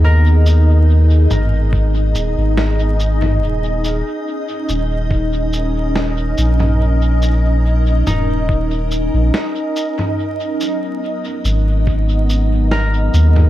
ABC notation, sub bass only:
X:1
M:4/4
L:1/16
Q:"Swing 16ths" 1/4=71
K:G#m
V:1 name="Sub bass" clef=bass
D,,6 G,,,4 D,,, G,,,4- G,,, | D,,,3 z3 D,,,8 A,,,2- | A,,,6 D,,,4- D,,, A,,, z4 | z6 G,,,8 D,,2 |]